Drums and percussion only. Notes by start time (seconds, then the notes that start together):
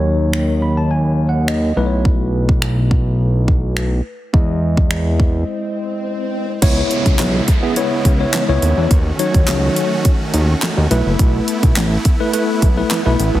0.33 finger snap
1.48 finger snap
2.05 kick
2.49 kick
2.62 finger snap
2.91 kick
3.48 kick
3.77 finger snap
4.34 kick
4.77 kick
4.91 finger snap
5.20 kick
6.62 kick, closed hi-hat, crash
6.91 closed hi-hat
7.06 kick, closed hi-hat
7.19 snare, clap, closed hi-hat
7.48 kick, closed hi-hat
7.76 closed hi-hat
8.05 kick, closed hi-hat
8.33 snare, clap, closed hi-hat
8.62 closed hi-hat
8.91 kick, closed hi-hat
9.19 closed hi-hat
9.34 kick, closed hi-hat
9.48 snare, clap, closed hi-hat
9.76 closed hi-hat
10.05 kick, closed hi-hat
10.34 closed hi-hat
10.62 snare, clap, closed hi-hat
10.91 closed hi-hat
11.19 kick, closed hi-hat
11.48 closed hi-hat
11.63 kick, closed hi-hat
11.76 snare, clap, closed hi-hat
12.05 kick, closed hi-hat
12.34 closed hi-hat
12.62 kick, closed hi-hat
12.91 snare, clap, closed hi-hat
13.20 closed hi-hat